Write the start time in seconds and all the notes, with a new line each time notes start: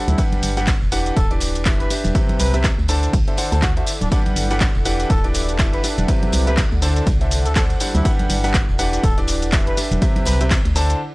Already playing: G3 D4 A4 C5 F#5
0.08 D2 E4, closed hi-hat, tambourine, high conga, shaker
0.18 G3 D4 G4 B4 F#5, kick, closed hi-hat, ride, tambourine, shaker
0.32 closed hi-hat, tambourine, high conga
0.43 G1, open hi-hat, ride, tambourine, shaker
0.57 G3 D4 G4 B4 F#5, snare, closed hi-hat, tambourine, shaker
0.67 kick, snare, clap, closed hi-hat, ride, tambourine, shaker
0.82 E1, tambourine
0.92 E3 D4 E4 G4 B4 F#5, open hi-hat, ride, tambourine, shaker
1.00 A4
1.06 closed hi-hat, ride, tambourine, shaker
1.17 D1 A4, kick, closed hi-hat, ride, tambourine, shaker
1.31 E3 D4 G4 B4 D5, closed hi-hat, tambourine
1.40 snare, open hi-hat, ride, tambourine, shaker
1.48 D5 F#5
1.55 E1, closed hi-hat, tambourine, shaker
1.65 E3 D4 G4 B4 E5, kick, snare, clap, closed hi-hat, ride, tambourine, shaker
1.80 B4, closed hi-hat, tambourine
1.90 D4 G4 B4 E5, open hi-hat, ride, tambourine, shaker
2.04 E1, closed hi-hat, tambourine, high conga, shaker
2.15 C3 C4 G4 B4 E5, kick, closed hi-hat, ride, tambourine, shaker
2.29 closed hi-hat, tambourine, high conga
2.39 C2 B4, snare, open hi-hat, ride, tambourine, shaker
2.54 C3 C4 G4 B4 E5, closed hi-hat, tambourine, shaker
2.64 kick, snare, clap, closed hi-hat, ride, tambourine, shaker
2.78 D2, tambourine
2.88 D3 D4 A4 C5 A5, open hi-hat, ride, tambourine, shaker
3.03 closed hi-hat, tambourine, shaker
3.13 C2, kick, closed hi-hat, ride, tambourine, shaker
3.27 D3 D4 A4 C5 E5, closed hi-hat, ride, tambourine
3.37 D3 D4 A4 C5 F#5, open hi-hat, ride, tambourine, shaker
3.52 D2 D3 D4 A4 C5 A5, closed hi-hat, tambourine, shaker
3.62 F#4, kick, snare, clap, closed hi-hat, ride, tambourine, shaker
3.77 D3 D4 F#4 A4 C5 E5, closed hi-hat, tambourine
3.86 open hi-hat, ride, tambourine, shaker
4.01 D1 D4, closed hi-hat, tambourine, high conga, shaker
4.11 G3 D4 G4 B4 F#5, kick, closed hi-hat, ride, tambourine, shaker
4.26 closed hi-hat, tambourine, high conga
4.36 G1, open hi-hat, ride, tambourine, shaker
4.51 G3 D4 G4 B4 F#5, snare, closed hi-hat, tambourine, shaker
4.60 kick, snare, clap, closed hi-hat, ride, tambourine, shaker
4.75 E1, tambourine
4.85 E3 D4 G4 B4 F#5, open hi-hat, ride, tambourine, shaker
4.99 closed hi-hat, ride, tambourine, shaker
5.10 D1 A4, kick, closed hi-hat, ride, tambourine, shaker
5.24 E3 D4 G4 B4 D5, closed hi-hat, tambourine
5.34 snare, open hi-hat, ride, tambourine, shaker
5.48 E1, closed hi-hat, tambourine, shaker
5.59 E3 D4 G4 B4 E5, kick, snare, clap, closed hi-hat, ride, tambourine, shaker
5.73 B4, closed hi-hat, tambourine
5.84 D4 G4 B4 E5, open hi-hat, ride, tambourine, shaker
5.98 E1, closed hi-hat, tambourine, high conga, shaker
6.08 C3 C4 G4 B4 E5, kick, closed hi-hat, ride, tambourine, shaker
6.22 closed hi-hat, tambourine, high conga
6.32 C2, snare, open hi-hat, ride, tambourine, shaker
6.47 C3 C4 G4 B4 E5, closed hi-hat, tambourine, shaker
6.57 kick, snare, clap, closed hi-hat, ride, tambourine, shaker
6.72 D2, tambourine
6.82 D3 D4 A4 C5 A5, open hi-hat, ride, tambourine, shaker
6.96 closed hi-hat, tambourine, shaker
7.07 C2, kick, closed hi-hat, ride, tambourine, shaker
7.21 D3 D4 A4 C5 E5, closed hi-hat, ride, tambourine
7.31 open hi-hat, ride, tambourine, shaker
7.46 D2 A4, closed hi-hat, tambourine, shaker
7.55 D3 D4 A4 C5 F#5, kick, snare, clap, closed hi-hat, ride, tambourine, shaker
7.70 closed hi-hat, tambourine
7.80 G3 D4 A4 C5 F#5, open hi-hat, ride, tambourine, shaker
7.95 D2 E4, closed hi-hat, tambourine, high conga, shaker
8.05 G3 D4 G4 B4 F#5, kick, closed hi-hat, ride, tambourine, shaker
8.19 closed hi-hat, tambourine, high conga
8.29 G1, open hi-hat, ride, tambourine, shaker
8.44 G3 D4 G4 B4 F#5, snare, closed hi-hat, tambourine, shaker
8.54 kick, snare, clap, closed hi-hat, ride, tambourine, shaker
8.69 E1, tambourine
8.79 E3 D4 G4 B4 F#5, open hi-hat, ride, tambourine, shaker
8.93 closed hi-hat, ride, tambourine, shaker
9.03 D1 A4, kick, closed hi-hat, ride, tambourine, shaker
9.18 E3 D4 G4 B4 D5, closed hi-hat, tambourine
9.28 snare, open hi-hat, ride, tambourine, shaker
9.42 E1, closed hi-hat, tambourine, shaker
9.52 E3 D4 G4 B4 E5, kick, snare, clap, closed hi-hat, ride, tambourine, shaker
9.67 B4, closed hi-hat, tambourine
9.77 D4 G4 B4 E5, open hi-hat, ride, tambourine, shaker
9.91 E1, closed hi-hat, tambourine, high conga, shaker
10.02 C3 C4 G4 B4 E5, kick, closed hi-hat, ride, tambourine, shaker
10.16 closed hi-hat, tambourine, high conga
10.25 C2 B4, snare, open hi-hat, ride, tambourine, shaker
10.41 C3 C4 G4 B4 E5, closed hi-hat, tambourine, shaker
10.51 kick, snare, clap, closed hi-hat, ride, tambourine, shaker
10.65 D2, closed hi-hat, tambourine
10.76 D3 D4 A4 C5 A5, open hi-hat, ride, tambourine, shaker
10.90 closed hi-hat, tambourine, shaker